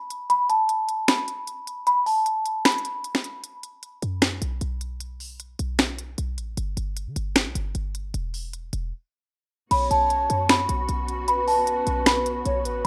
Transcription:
Already playing: B5
0.10 closed hi-hat
0.30 B5, closed hi-hat
0.50 A5, closed hi-hat
0.69 closed hi-hat
0.89 closed hi-hat
1.08 B5, finger snap, snare, closed hi-hat
1.28 closed hi-hat
1.47 closed hi-hat
1.67 closed hi-hat
1.87 B5, closed hi-hat
2.06 A5, open hi-hat
2.26 closed hi-hat
2.46 closed hi-hat
2.65 B5, finger snap, snare, closed hi-hat
2.72 closed hi-hat
2.78 closed hi-hat
2.85 closed hi-hat
3.04 closed hi-hat
3.15 finger snap, snare
3.24 closed hi-hat
3.44 closed hi-hat
3.63 closed hi-hat
3.83 closed hi-hat
4.02 F#2, closed hi-hat
4.22 finger snap, snare, closed hi-hat
4.42 B1, closed hi-hat
4.61 B1, closed hi-hat
4.81 closed hi-hat
5.00 closed hi-hat
5.20 open hi-hat
5.40 closed hi-hat
5.59 B1, closed hi-hat
5.79 finger snap, snare, closed hi-hat
5.99 closed hi-hat
6.18 B1, closed hi-hat
6.38 A1, closed hi-hat
6.57 G1, closed hi-hat
6.77 G1, closed hi-hat
6.97 closed hi-hat
7.07 D3
7.16 G1, closed hi-hat
7.36 finger snap, snare, closed hi-hat
7.46 B1
7.55 G1, closed hi-hat
7.75 G1, closed hi-hat
7.95 closed hi-hat
8.14 E1, closed hi-hat
8.34 open hi-hat
8.53 closed hi-hat
8.73 E1, closed hi-hat
9.71 B1 B3 C#4 F#4 C#5 B5, closed hi-hat, crash
9.91 B1 A5, closed hi-hat
10.10 closed hi-hat
10.30 F#2, closed hi-hat
10.49 B5, finger snap, snare, closed hi-hat
10.69 B1, closed hi-hat
10.89 B1, closed hi-hat
11.08 closed hi-hat
11.28 B4 B5, closed hi-hat
11.48 A5, open hi-hat
11.67 closed hi-hat
11.87 B1, closed hi-hat
12.06 B5, finger snap, snare, closed hi-hat
12.26 closed hi-hat
12.45 B1 C#5, closed hi-hat
12.65 A1 B4, closed hi-hat

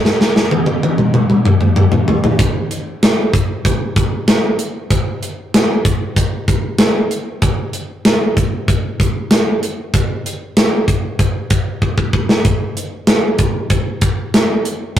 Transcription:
0.05 snare
0.21 snare
0.36 snare
0.51 high tom
0.66 high tom
0.83 high tom
0.98 mid tom
1.14 mid tom
1.30 mid tom
1.45 mid tom
1.61 mid tom
1.76 mid tom
1.92 floor tom
2.08 floor tom
2.24 floor tom
2.39 kick, closed hi-hat
2.71 closed hi-hat
3.03 snare, closed hi-hat
3.34 kick, closed hi-hat
3.65 kick, closed hi-hat
3.96 kick, closed hi-hat
4.28 snare, closed hi-hat
4.59 closed hi-hat
4.90 kick, closed hi-hat
5.23 closed hi-hat
5.54 snare, closed hi-hat
5.85 kick, closed hi-hat
6.16 kick, closed hi-hat
6.48 kick, closed hi-hat
6.78 snare, closed hi-hat
7.11 closed hi-hat
7.42 kick, closed hi-hat
7.73 closed hi-hat
8.05 snare, closed hi-hat
8.37 kick, closed hi-hat
8.68 kick, closed hi-hat
9.00 kick, closed hi-hat
9.31 snare, closed hi-hat
9.63 closed hi-hat
9.94 kick, closed hi-hat
10.26 closed hi-hat
10.57 snare, closed hi-hat
10.88 kick, closed hi-hat
11.19 kick, closed hi-hat
11.50 kick, closed hi-hat
11.82 kick
11.98 kick
12.13 kick
12.29 snare
12.45 kick, closed hi-hat
12.77 closed hi-hat
13.07 snare, closed hi-hat
13.38 kick, closed hi-hat
13.70 kick, closed hi-hat
14.01 kick, closed hi-hat
14.34 snare, closed hi-hat
14.65 closed hi-hat

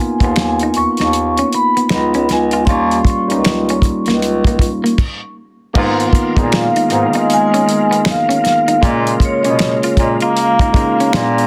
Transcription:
Already playing: A#3 B3 D#4 F4 G#5
0.01 muted clean electric guitar stroke
0.20 D#2 A#3 B3 D#4 F4, kick, closed hi-hat
0.24 B3
0.36 G#5, finger snap, snare, closed hi-hat
0.59 D#4, closed hi-hat
0.74 D#2 C#6, muted clean electric guitar stroke, closed hi-hat
0.97 D#2, snare, closed hi-hat
1.01 D#4
1.13 closed hi-hat
1.37 C#4, closed hi-hat
1.53 B5, muted clean electric guitar stroke, closed hi-hat
1.77 B3, closed hi-hat
1.89 C#2 G#3 B3 D#4 F4, finger snap, snare, closed hi-hat
2.14 C#2 C#4, closed hi-hat
2.29 C#2 G#5, muted clean electric guitar stroke, snare, closed hi-hat
2.51 F4, closed hi-hat
2.65 D#2 G3 A#3 C#4 F4 C6, kick, closed hi-hat
2.70 D#4 C#6
2.91 closed hi-hat
3.05 kick, closed hi-hat
3.10 muted clean electric guitar stroke
3.28 C#2 G3 A#3 C#4 D#4, closed hi-hat
3.45 finger snap, snare, closed hi-hat
3.69 C#4, closed hi-hat
3.82 C#2, muted clean electric guitar stroke, kick, closed hi-hat
4.06 C#2 A#3, snare, closed hi-hat
4.22 closed hi-hat
4.44 A#3, kick, closed hi-hat
4.59 muted clean electric guitar stroke, kick, closed hi-hat
4.84 A#3, closed hi-hat
4.98 kick, crash
5.74 G#2 D#3 G#3 A#3 B3 D#4 F4 A#4, kick, crash
6.00 closed hi-hat
6.13 muted clean electric guitar stroke, kick, closed hi-hat
6.35 A#2 G#3 A#3 B3 D#4 G#4, kick, closed hi-hat
6.52 F5, finger snap, snare, closed hi-hat
6.76 D#4, closed hi-hat
6.89 G#2 A#3 B3 D#4 G#4, muted clean electric guitar stroke, closed hi-hat
7.13 G#3 D#4, closed hi-hat
7.30 G#5, closed hi-hat
7.54 C#4, closed hi-hat
7.68 muted clean electric guitar stroke, closed hi-hat
7.91 B3, closed hi-hat
8.05 finger snap, snare, closed hi-hat
8.10 F5
8.29 C#4, closed hi-hat
8.44 muted clean electric guitar stroke, snare, closed hi-hat
8.49 F5
8.68 D#4, closed hi-hat
8.82 A#2 C#3 G#3 A#3 C#4 F4, kick, closed hi-hat
8.86 D#5
9.07 closed hi-hat
9.20 muted clean electric guitar stroke, kick, closed hi-hat
9.25 C#5
9.43 B2 G#3 A#3 C#4 G#4, closed hi-hat
9.59 finger snap, snare, closed hi-hat
9.83 F4, closed hi-hat
9.97 A#2, muted clean electric guitar stroke, kick, closed hi-hat
10.02 D#5
10.20 A#3 F4, closed hi-hat
10.37 F5, closed hi-hat
10.59 D#4, kick, closed hi-hat
10.73 G#3 A#3 C#4 D#4, muted clean electric guitar stroke, kick, closed hi-hat
11.00 C#4, closed hi-hat
11.12 A#2 G#3 B3 D4 D#4 A#4, finger snap, muted clean electric guitar stroke, snare, closed hi-hat
11.22 F4
11.38 closed hi-hat

